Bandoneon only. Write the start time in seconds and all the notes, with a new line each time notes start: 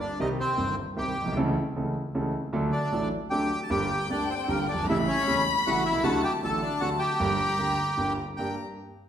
0.00 D4 D5
0.20 D#4 D#5
0.40 C4 C5
0.98 G4 G5
2.72 D4 D5
3.30 G4 G5
3.63 A5
3.70 G4 G5
4.10 D4 D5
4.30 C4 C5
4.35 C5 D5
4.40 C4
4.49 A#3 A#4
4.69 D4 D5
4.89 E4 E5
5.08 C#4 C#5
5.66 F#4 F#5
5.86 E4 E5
6.04 F#4 F#5
6.24 G4 G5
6.44 A4 A5
6.62 D4 D5
6.81 F#4 F#5
6.99 G4 G5
8.37 G5